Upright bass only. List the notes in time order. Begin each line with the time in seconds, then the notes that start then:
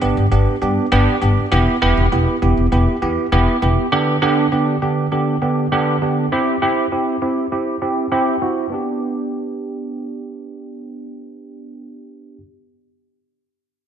0.02 G1
0.17 G1
0.32 G1
0.62 G2
0.92 G1
1.22 G1
1.52 E1
1.82 E1
1.97 E1
2.12 E1
2.42 E1
2.57 E1
2.72 E1
3.02 E2
3.32 E1
3.62 E1